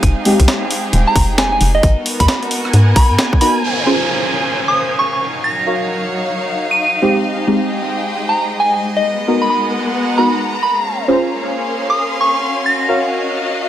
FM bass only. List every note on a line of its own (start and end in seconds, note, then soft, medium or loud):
0.03 0.15 F1 medium
0.40 0.47 C2 loud
0.93 1.05 D#1 loud
1.16 1.59 F1 medium
1.61 1.81 F1 medium
1.83 1.96 G#1 loud
2.20 2.27 D#2 loud
2.73 2.94 G#2 loud
2.96 3.12 B1 medium
3.10 3.17 G#2 medium